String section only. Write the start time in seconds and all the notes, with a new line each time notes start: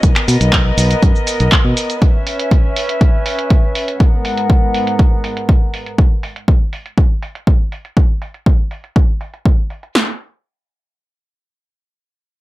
0.03 B3 A#4 D#5
2.02 C#4 B4 E5
4.00 G#2 B3 A#4 F#5